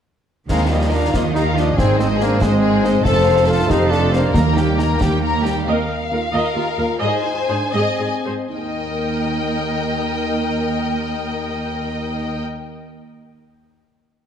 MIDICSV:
0, 0, Header, 1, 10, 480
1, 0, Start_track
1, 0, Key_signature, -3, "major"
1, 0, Tempo, 428878
1, 552, Time_signature, 6, 3, 24, 8
1, 4870, Tempo, 440852
1, 7270, Tempo, 466926
1, 8230, Tempo, 500835
1, 8710, Tempo, 536673
1, 14323, End_track
2, 0, Start_track
2, 0, Title_t, "Violin section"
2, 0, Program_c, 0, 48
2, 564, Note_on_c, 0, 77, 38
2, 782, Note_off_c, 0, 77, 0
2, 784, Note_on_c, 0, 75, 34
2, 1028, Note_off_c, 0, 75, 0
2, 1040, Note_on_c, 0, 77, 36
2, 1277, Note_off_c, 0, 77, 0
2, 1287, Note_on_c, 0, 75, 38
2, 1521, Note_off_c, 0, 75, 0
2, 1526, Note_on_c, 0, 77, 40
2, 1744, Note_off_c, 0, 77, 0
2, 1756, Note_on_c, 0, 75, 45
2, 1995, Note_off_c, 0, 75, 0
2, 2021, Note_on_c, 0, 72, 46
2, 2230, Note_off_c, 0, 72, 0
2, 2274, Note_on_c, 0, 75, 47
2, 2490, Note_off_c, 0, 75, 0
2, 2495, Note_on_c, 0, 72, 45
2, 2711, Note_on_c, 0, 75, 51
2, 2720, Note_off_c, 0, 72, 0
2, 2934, Note_on_c, 0, 72, 50
2, 2947, Note_off_c, 0, 75, 0
2, 3160, Note_off_c, 0, 72, 0
2, 3172, Note_on_c, 0, 75, 50
2, 3408, Note_on_c, 0, 81, 56
2, 3415, Note_off_c, 0, 75, 0
2, 3634, Note_on_c, 0, 77, 52
2, 3635, Note_off_c, 0, 81, 0
2, 3883, Note_on_c, 0, 81, 51
2, 3886, Note_off_c, 0, 77, 0
2, 4132, Note_off_c, 0, 81, 0
2, 4137, Note_on_c, 0, 77, 55
2, 4368, Note_on_c, 0, 81, 47
2, 4381, Note_off_c, 0, 77, 0
2, 4601, Note_off_c, 0, 81, 0
2, 4623, Note_on_c, 0, 77, 44
2, 4869, Note_off_c, 0, 77, 0
2, 4869, Note_on_c, 0, 82, 50
2, 5091, Note_off_c, 0, 82, 0
2, 5102, Note_on_c, 0, 79, 43
2, 5343, Note_off_c, 0, 79, 0
2, 5353, Note_on_c, 0, 82, 40
2, 5588, Note_off_c, 0, 82, 0
2, 5590, Note_on_c, 0, 79, 44
2, 5827, Note_off_c, 0, 79, 0
2, 5841, Note_on_c, 0, 82, 40
2, 6057, Note_off_c, 0, 82, 0
2, 6086, Note_on_c, 0, 79, 41
2, 6296, Note_on_c, 0, 77, 41
2, 6315, Note_off_c, 0, 79, 0
2, 7694, Note_off_c, 0, 77, 0
2, 7747, Note_on_c, 0, 80, 50
2, 8944, Note_off_c, 0, 80, 0
2, 9196, Note_on_c, 0, 79, 34
2, 12661, Note_off_c, 0, 79, 0
2, 14323, End_track
3, 0, Start_track
3, 0, Title_t, "Violin section"
3, 0, Program_c, 1, 48
3, 561, Note_on_c, 1, 70, 38
3, 781, Note_off_c, 1, 70, 0
3, 782, Note_on_c, 1, 65, 36
3, 1013, Note_on_c, 1, 70, 40
3, 1027, Note_off_c, 1, 65, 0
3, 1262, Note_on_c, 1, 65, 38
3, 1263, Note_off_c, 1, 70, 0
3, 1505, Note_on_c, 1, 70, 42
3, 1509, Note_off_c, 1, 65, 0
3, 1733, Note_off_c, 1, 70, 0
3, 1733, Note_on_c, 1, 65, 40
3, 1953, Note_on_c, 1, 68, 49
3, 1983, Note_off_c, 1, 65, 0
3, 2194, Note_off_c, 1, 68, 0
3, 2208, Note_on_c, 1, 72, 46
3, 2439, Note_on_c, 1, 68, 49
3, 2457, Note_off_c, 1, 72, 0
3, 2672, Note_on_c, 1, 72, 53
3, 2692, Note_off_c, 1, 68, 0
3, 2911, Note_on_c, 1, 68, 49
3, 2927, Note_off_c, 1, 72, 0
3, 3148, Note_off_c, 1, 68, 0
3, 3179, Note_on_c, 1, 72, 50
3, 3409, Note_on_c, 1, 69, 55
3, 3419, Note_off_c, 1, 72, 0
3, 3636, Note_off_c, 1, 69, 0
3, 3647, Note_on_c, 1, 72, 55
3, 3893, Note_off_c, 1, 72, 0
3, 3911, Note_on_c, 1, 69, 50
3, 4128, Note_on_c, 1, 72, 52
3, 4146, Note_off_c, 1, 69, 0
3, 4344, Note_on_c, 1, 69, 50
3, 4376, Note_off_c, 1, 72, 0
3, 4588, Note_off_c, 1, 69, 0
3, 4611, Note_on_c, 1, 72, 44
3, 4839, Note_on_c, 1, 70, 42
3, 4863, Note_off_c, 1, 72, 0
3, 5076, Note_off_c, 1, 70, 0
3, 5102, Note_on_c, 1, 67, 38
3, 5341, Note_on_c, 1, 70, 42
3, 5343, Note_off_c, 1, 67, 0
3, 5582, Note_off_c, 1, 70, 0
3, 5588, Note_on_c, 1, 67, 44
3, 5815, Note_on_c, 1, 70, 46
3, 5826, Note_off_c, 1, 67, 0
3, 6043, Note_off_c, 1, 70, 0
3, 6056, Note_on_c, 1, 67, 41
3, 6300, Note_off_c, 1, 67, 0
3, 7032, Note_on_c, 1, 70, 45
3, 7701, Note_off_c, 1, 70, 0
3, 7740, Note_on_c, 1, 72, 55
3, 8454, Note_off_c, 1, 72, 0
3, 8476, Note_on_c, 1, 75, 41
3, 8825, Note_off_c, 1, 75, 0
3, 9198, Note_on_c, 1, 75, 33
3, 12663, Note_off_c, 1, 75, 0
3, 14323, End_track
4, 0, Start_track
4, 0, Title_t, "French horn section"
4, 0, Program_c, 2, 60
4, 544, Note_on_c, 2, 60, 64
4, 771, Note_off_c, 2, 60, 0
4, 780, Note_on_c, 2, 58, 51
4, 1027, Note_off_c, 2, 58, 0
4, 1042, Note_on_c, 2, 65, 53
4, 1261, Note_off_c, 2, 65, 0
4, 1275, Note_on_c, 2, 65, 62
4, 1383, Note_off_c, 2, 65, 0
4, 1509, Note_on_c, 2, 67, 65
4, 1618, Note_off_c, 2, 67, 0
4, 1744, Note_on_c, 2, 65, 64
4, 1984, Note_off_c, 2, 65, 0
4, 1991, Note_on_c, 2, 63, 79
4, 2213, Note_off_c, 2, 63, 0
4, 2227, Note_on_c, 2, 63, 67
4, 2462, Note_off_c, 2, 63, 0
4, 2466, Note_on_c, 2, 62, 74
4, 2699, Note_on_c, 2, 60, 79
4, 2700, Note_off_c, 2, 62, 0
4, 3402, Note_off_c, 2, 60, 0
4, 3431, Note_on_c, 2, 72, 91
4, 3885, Note_on_c, 2, 69, 91
4, 3894, Note_off_c, 2, 72, 0
4, 4120, Note_on_c, 2, 67, 90
4, 4128, Note_off_c, 2, 69, 0
4, 4367, Note_off_c, 2, 67, 0
4, 4375, Note_on_c, 2, 65, 78
4, 4621, Note_off_c, 2, 65, 0
4, 4627, Note_on_c, 2, 62, 64
4, 4858, Note_on_c, 2, 63, 61
4, 4866, Note_off_c, 2, 62, 0
4, 6060, Note_off_c, 2, 63, 0
4, 6291, Note_on_c, 2, 60, 75
4, 6402, Note_off_c, 2, 60, 0
4, 6533, Note_on_c, 2, 58, 46
4, 6775, Note_off_c, 2, 58, 0
4, 6788, Note_on_c, 2, 65, 59
4, 6996, Note_off_c, 2, 65, 0
4, 7009, Note_on_c, 2, 65, 60
4, 7122, Note_off_c, 2, 65, 0
4, 7247, Note_on_c, 2, 67, 63
4, 7487, Note_off_c, 2, 67, 0
4, 7493, Note_on_c, 2, 65, 53
4, 7730, Note_off_c, 2, 65, 0
4, 7736, Note_on_c, 2, 63, 72
4, 7976, Note_off_c, 2, 63, 0
4, 7991, Note_on_c, 2, 63, 63
4, 8101, Note_off_c, 2, 63, 0
4, 8216, Note_on_c, 2, 62, 58
4, 8448, Note_on_c, 2, 60, 50
4, 8456, Note_off_c, 2, 62, 0
4, 9159, Note_on_c, 2, 63, 47
4, 9179, Note_off_c, 2, 60, 0
4, 12624, Note_off_c, 2, 63, 0
4, 14323, End_track
5, 0, Start_track
5, 0, Title_t, "Trumpet"
5, 0, Program_c, 3, 56
5, 554, Note_on_c, 3, 56, 56
5, 791, Note_on_c, 3, 55, 45
5, 807, Note_off_c, 3, 56, 0
5, 1032, Note_off_c, 3, 55, 0
5, 1037, Note_on_c, 3, 62, 49
5, 1257, Note_off_c, 3, 62, 0
5, 1264, Note_on_c, 3, 58, 53
5, 1374, Note_off_c, 3, 58, 0
5, 1503, Note_on_c, 3, 63, 55
5, 1614, Note_off_c, 3, 63, 0
5, 1752, Note_on_c, 3, 62, 53
5, 1992, Note_on_c, 3, 60, 58
5, 2009, Note_off_c, 3, 62, 0
5, 2216, Note_off_c, 3, 60, 0
5, 2222, Note_on_c, 3, 60, 61
5, 2331, Note_off_c, 3, 60, 0
5, 2481, Note_on_c, 3, 58, 62
5, 2706, Note_on_c, 3, 56, 69
5, 2723, Note_off_c, 3, 58, 0
5, 3417, Note_on_c, 3, 69, 87
5, 3434, Note_off_c, 3, 56, 0
5, 3888, Note_off_c, 3, 69, 0
5, 3894, Note_on_c, 3, 65, 70
5, 4143, Note_on_c, 3, 63, 74
5, 4160, Note_off_c, 3, 65, 0
5, 4377, Note_on_c, 3, 62, 65
5, 4394, Note_off_c, 3, 63, 0
5, 4616, Note_off_c, 3, 62, 0
5, 4623, Note_on_c, 3, 58, 60
5, 4864, Note_off_c, 3, 58, 0
5, 4877, Note_on_c, 3, 58, 52
5, 6045, Note_off_c, 3, 58, 0
5, 14323, End_track
6, 0, Start_track
6, 0, Title_t, "Viola section"
6, 0, Program_c, 4, 48
6, 551, Note_on_c, 4, 51, 36
6, 775, Note_off_c, 4, 51, 0
6, 798, Note_on_c, 4, 53, 36
6, 1035, Note_off_c, 4, 53, 0
6, 1042, Note_on_c, 4, 51, 38
6, 1278, Note_off_c, 4, 51, 0
6, 1279, Note_on_c, 4, 53, 38
6, 1517, Note_off_c, 4, 53, 0
6, 1523, Note_on_c, 4, 51, 43
6, 1742, Note_off_c, 4, 51, 0
6, 1775, Note_on_c, 4, 53, 39
6, 2004, Note_off_c, 4, 53, 0
6, 2015, Note_on_c, 4, 60, 52
6, 2227, Note_off_c, 4, 60, 0
6, 2245, Note_on_c, 4, 56, 50
6, 2476, Note_off_c, 4, 56, 0
6, 2483, Note_on_c, 4, 60, 50
6, 2714, Note_off_c, 4, 60, 0
6, 2716, Note_on_c, 4, 56, 47
6, 2950, Note_off_c, 4, 56, 0
6, 2957, Note_on_c, 4, 60, 54
6, 3173, Note_off_c, 4, 60, 0
6, 3190, Note_on_c, 4, 56, 50
6, 3424, Note_off_c, 4, 56, 0
6, 3438, Note_on_c, 4, 57, 54
6, 3652, Note_off_c, 4, 57, 0
6, 3671, Note_on_c, 4, 60, 52
6, 3905, Note_off_c, 4, 60, 0
6, 3907, Note_on_c, 4, 57, 55
6, 4144, Note_off_c, 4, 57, 0
6, 4156, Note_on_c, 4, 60, 51
6, 4390, Note_off_c, 4, 60, 0
6, 4402, Note_on_c, 4, 57, 49
6, 4619, Note_off_c, 4, 57, 0
6, 4643, Note_on_c, 4, 60, 44
6, 4879, Note_off_c, 4, 60, 0
6, 4888, Note_on_c, 4, 58, 42
6, 5102, Note_off_c, 4, 58, 0
6, 5125, Note_on_c, 4, 55, 41
6, 5353, Note_on_c, 4, 58, 43
6, 5355, Note_off_c, 4, 55, 0
6, 5576, Note_on_c, 4, 55, 42
6, 5588, Note_off_c, 4, 58, 0
6, 5820, Note_off_c, 4, 55, 0
6, 5835, Note_on_c, 4, 58, 42
6, 6054, Note_off_c, 4, 58, 0
6, 6069, Note_on_c, 4, 55, 41
6, 6307, Note_off_c, 4, 55, 0
6, 6311, Note_on_c, 4, 75, 45
6, 6316, Note_on_c, 4, 70, 47
6, 6531, Note_off_c, 4, 75, 0
6, 6534, Note_off_c, 4, 70, 0
6, 6797, Note_on_c, 4, 70, 36
6, 6798, Note_off_c, 4, 70, 0
6, 6798, Note_on_c, 4, 70, 39
6, 6886, Note_off_c, 4, 70, 0
6, 7023, Note_on_c, 4, 75, 49
6, 7027, Note_on_c, 4, 70, 44
6, 7251, Note_off_c, 4, 75, 0
6, 7253, Note_off_c, 4, 70, 0
6, 7270, Note_on_c, 4, 65, 43
6, 7277, Note_on_c, 4, 70, 42
6, 7352, Note_off_c, 4, 65, 0
6, 7359, Note_off_c, 4, 70, 0
6, 7504, Note_on_c, 4, 70, 42
6, 7508, Note_off_c, 4, 70, 0
6, 7508, Note_on_c, 4, 70, 45
6, 7591, Note_off_c, 4, 70, 0
6, 7737, Note_on_c, 4, 75, 54
6, 7740, Note_on_c, 4, 68, 52
6, 7964, Note_off_c, 4, 75, 0
6, 7966, Note_off_c, 4, 68, 0
6, 8225, Note_on_c, 4, 72, 42
6, 8228, Note_on_c, 4, 68, 48
6, 8302, Note_off_c, 4, 72, 0
6, 8305, Note_off_c, 4, 68, 0
6, 8471, Note_on_c, 4, 68, 46
6, 8471, Note_on_c, 4, 75, 48
6, 8696, Note_off_c, 4, 68, 0
6, 8696, Note_off_c, 4, 75, 0
6, 8711, Note_on_c, 4, 68, 37
6, 8783, Note_off_c, 4, 68, 0
6, 8950, Note_on_c, 4, 68, 31
6, 8953, Note_on_c, 4, 72, 32
6, 9022, Note_off_c, 4, 68, 0
6, 9025, Note_off_c, 4, 72, 0
6, 9193, Note_on_c, 4, 70, 38
6, 12658, Note_off_c, 4, 70, 0
6, 14323, End_track
7, 0, Start_track
7, 0, Title_t, "Timpani"
7, 0, Program_c, 5, 47
7, 4870, Note_on_c, 5, 51, 69
7, 5541, Note_off_c, 5, 51, 0
7, 14323, End_track
8, 0, Start_track
8, 0, Title_t, "Cello section"
8, 0, Program_c, 6, 48
8, 556, Note_on_c, 6, 51, 47
8, 1190, Note_off_c, 6, 51, 0
8, 1290, Note_on_c, 6, 51, 54
8, 1918, Note_off_c, 6, 51, 0
8, 2005, Note_on_c, 6, 44, 59
8, 2628, Note_off_c, 6, 44, 0
8, 2707, Note_on_c, 6, 44, 72
8, 3336, Note_off_c, 6, 44, 0
8, 3415, Note_on_c, 6, 41, 65
8, 4052, Note_off_c, 6, 41, 0
8, 4140, Note_on_c, 6, 41, 73
8, 4783, Note_off_c, 6, 41, 0
8, 4858, Note_on_c, 6, 39, 52
8, 5495, Note_off_c, 6, 39, 0
8, 5588, Note_on_c, 6, 39, 58
8, 6222, Note_off_c, 6, 39, 0
8, 6329, Note_on_c, 6, 39, 49
8, 6416, Note_off_c, 6, 39, 0
8, 6791, Note_on_c, 6, 39, 38
8, 6879, Note_off_c, 6, 39, 0
8, 7033, Note_on_c, 6, 39, 52
8, 7120, Note_off_c, 6, 39, 0
8, 7270, Note_on_c, 6, 39, 40
8, 7352, Note_off_c, 6, 39, 0
8, 7505, Note_on_c, 6, 39, 39
8, 7587, Note_off_c, 6, 39, 0
8, 7738, Note_on_c, 6, 44, 59
8, 7821, Note_off_c, 6, 44, 0
8, 8236, Note_on_c, 6, 44, 38
8, 8313, Note_off_c, 6, 44, 0
8, 8461, Note_on_c, 6, 44, 56
8, 8538, Note_off_c, 6, 44, 0
8, 8709, Note_on_c, 6, 44, 38
8, 8781, Note_off_c, 6, 44, 0
8, 8947, Note_on_c, 6, 44, 29
8, 9018, Note_off_c, 6, 44, 0
8, 9175, Note_on_c, 6, 39, 36
8, 12641, Note_off_c, 6, 39, 0
8, 14323, End_track
9, 0, Start_track
9, 0, Title_t, "Double bass section"
9, 0, Program_c, 7, 48
9, 545, Note_on_c, 7, 39, 49
9, 1185, Note_off_c, 7, 39, 0
9, 1271, Note_on_c, 7, 39, 50
9, 1908, Note_off_c, 7, 39, 0
9, 1993, Note_on_c, 7, 32, 59
9, 2622, Note_off_c, 7, 32, 0
9, 2708, Note_on_c, 7, 32, 60
9, 3337, Note_off_c, 7, 32, 0
9, 3419, Note_on_c, 7, 29, 73
9, 4054, Note_off_c, 7, 29, 0
9, 4140, Note_on_c, 7, 29, 65
9, 4783, Note_off_c, 7, 29, 0
9, 4864, Note_on_c, 7, 39, 53
9, 5498, Note_off_c, 7, 39, 0
9, 5581, Note_on_c, 7, 39, 55
9, 6219, Note_off_c, 7, 39, 0
9, 14323, End_track
10, 0, Start_track
10, 0, Title_t, "Drums"
10, 552, Note_on_c, 9, 35, 58
10, 552, Note_on_c, 9, 38, 46
10, 552, Note_on_c, 9, 49, 36
10, 663, Note_off_c, 9, 35, 0
10, 663, Note_off_c, 9, 38, 0
10, 663, Note_off_c, 9, 49, 0
10, 1273, Note_on_c, 9, 35, 62
10, 1273, Note_on_c, 9, 38, 60
10, 1385, Note_off_c, 9, 35, 0
10, 1385, Note_off_c, 9, 38, 0
10, 1515, Note_on_c, 9, 38, 40
10, 1626, Note_off_c, 9, 38, 0
10, 1757, Note_on_c, 9, 38, 41
10, 1869, Note_off_c, 9, 38, 0
10, 1995, Note_on_c, 9, 35, 72
10, 1995, Note_on_c, 9, 38, 60
10, 2107, Note_off_c, 9, 35, 0
10, 2107, Note_off_c, 9, 38, 0
10, 2233, Note_on_c, 9, 38, 44
10, 2345, Note_off_c, 9, 38, 0
10, 2467, Note_on_c, 9, 38, 45
10, 2579, Note_off_c, 9, 38, 0
10, 2701, Note_on_c, 9, 35, 63
10, 2701, Note_on_c, 9, 38, 71
10, 2813, Note_off_c, 9, 35, 0
10, 2813, Note_off_c, 9, 38, 0
10, 3184, Note_on_c, 9, 38, 50
10, 3296, Note_off_c, 9, 38, 0
10, 3415, Note_on_c, 9, 35, 69
10, 3415, Note_on_c, 9, 38, 58
10, 3527, Note_off_c, 9, 35, 0
10, 3527, Note_off_c, 9, 38, 0
10, 4139, Note_on_c, 9, 35, 72
10, 4139, Note_on_c, 9, 38, 72
10, 4251, Note_off_c, 9, 35, 0
10, 4251, Note_off_c, 9, 38, 0
10, 4388, Note_on_c, 9, 38, 44
10, 4500, Note_off_c, 9, 38, 0
10, 4624, Note_on_c, 9, 38, 47
10, 4736, Note_off_c, 9, 38, 0
10, 4861, Note_on_c, 9, 35, 69
10, 4861, Note_on_c, 9, 38, 68
10, 4970, Note_off_c, 9, 35, 0
10, 4970, Note_off_c, 9, 38, 0
10, 5106, Note_on_c, 9, 38, 47
10, 5215, Note_off_c, 9, 38, 0
10, 5348, Note_on_c, 9, 38, 51
10, 5457, Note_off_c, 9, 38, 0
10, 5586, Note_on_c, 9, 35, 71
10, 5586, Note_on_c, 9, 38, 66
10, 5695, Note_off_c, 9, 35, 0
10, 5695, Note_off_c, 9, 38, 0
10, 6071, Note_on_c, 9, 38, 47
10, 6180, Note_off_c, 9, 38, 0
10, 14323, End_track
0, 0, End_of_file